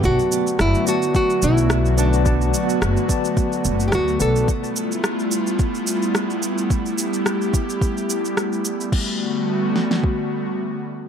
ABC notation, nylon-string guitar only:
X:1
M:4/4
L:1/16
Q:"Swing 16ths" 1/4=108
K:G
V:1 name="Nylon-string guitar"
F4 E2 F2 F2 E4 D2- | D2 z8 z3/2 G/2 F2 A2 | z16 | z16 |
z16 |]